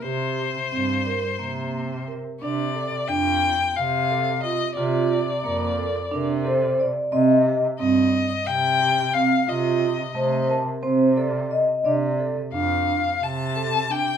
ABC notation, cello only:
X:1
M:7/8
L:1/8
Q:1/4=89
K:Bb
V:1 name="Cello" clef=bass
C,2 G,,2 C,3 | C,2 F,,2 C,3 | C,2 F,,2 C,3 | C,2 G,,2 C,3 |
C,2 C,2 C,3 | C,2 F,,2 C,3 |]